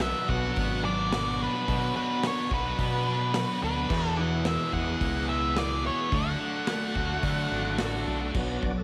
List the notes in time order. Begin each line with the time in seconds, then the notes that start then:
Already playing: B1 B2 F#3 B3 D4 F#4 D5
0.00 B2 F#3 B3 D4 F#4 E5, snare, open hi-hat
0.28 B1 B2 F#3 B3 D4 F#4 F#5, kick
0.42 B3 D4 F#4
0.56 G#1 B3, kick, open hi-hat
0.70 B3 D4 F#4
0.85 F#3 B3 D4 F#4 D5
1.13 B2 F#3 B3 D4 F#4, snare, open hi-hat
1.42 D4 B4
1.53 B3 D4 F#4
1.67 B2 F#3 B3 D4 F#4 D5, kick, open hi-hat
1.93 F#3 B3 D4 B4
2.22 B2 F#3 B3 D4 F#4, snare, open hi-hat
2.27 C#5
2.50 B1 B2 F#3 B3 D4 F#4 B4, kick
2.63 B3 D4 F#4
2.79 B2 B3, kick, open hi-hat
2.93 B3 D4 F#4
3.06 F#3 B3 D4 F#4
3.34 B2 F#3 B3 D4 F#4, snare, open hi-hat
3.61 D2 D4 B4
3.76 B3 D4 F#4
3.89 E2 B2 E3 G#3 B3 E4 G#4 E5, kick, crash
4.08 A4
4.17 E3 G#3 B3 F#5
4.21 G#4
4.44 E2 B2 E3 G#3 B3 G#4 E5, snare, open hi-hat
4.71 E2 B2 E3 G#3 B3 E4 G#4 F#5, kick
4.76 G#4
4.85 E3 G#3 B3 G#4
5.00 C#2 G#3, kick, open hi-hat
5.13 E3 G#3 B3 G#4
5.26 E3 G#3 B3 G#4 E5
5.56 E2 B2 E3 G#3 B3 G#4 D5, snare, open hi-hat
5.83 B3 C#5
5.99 E3 G#3 B3 G#4
6.08 D2 D3 F#3 A3 D4 F#4 A4 F#5, kick
6.13 D4 F#4 F#5, open hi-hat
6.39 D3 A3 D4 F#4
6.67 D3 A3 D4 F#4, snare, open hi-hat
6.94 D2 D3 F#3 A3 D4 F#4, kick
7.09 D4 F#4
7.13 A3
7.23 D3 A3, kick, open hi-hat
7.38 A3 D4 F#4
7.51 G#1 D3 A3 D4 F#4
7.78 A1 D3 A3 D4 F#4, snare, open hi-hat
8.07 B1 D4
8.20 D4 F#4
8.25 A3
8.35 B1 B2 F#3 B3 D4 F#4, kick, crash
8.62 B1 B2 F#3 B3 D5, kick
8.66 D4 F#4
8.77 A4